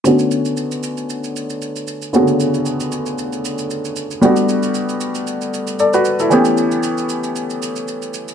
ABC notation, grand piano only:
X:1
M:4/4
L:1/16
Q:"Swing 16ths" 1/4=115
K:Bm
V:1 name="Grand piano"
z16 | z16 | z12 [Ad] [FB]2 [EA]- | [EA] z12 z3 |]
V:2 name="Grand piano"
[D,A,B,CF]16 | [C,D,A,B,CF]16 | [G,A,B,DF]12 z4 | [E,A,B,CG]16 |]